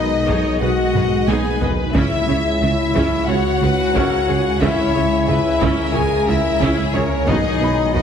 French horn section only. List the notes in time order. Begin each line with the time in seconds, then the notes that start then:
Already playing: D#4
0.62 F#4
1.28 G#4
1.96 E4
2.62 E4
3.27 F#4
4.61 E4
5.28 E4
5.94 G#4
6.29 E4
6.94 C#4
7.28 D#4
7.94 D#4